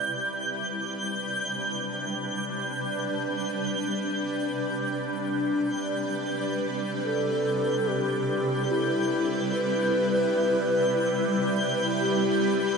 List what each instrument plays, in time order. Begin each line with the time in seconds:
Already playing: ambient pad C3 G3 E4 B4 D5, synth texture G6
0.31 ambient pad D4
6.19 synth texture G6
7.05 alto flute A4
7.34 ambient pad E4
7.88 alto flute G4
8.71 alto flute E4
9.52 alto flute B4
12.01 alto flute G4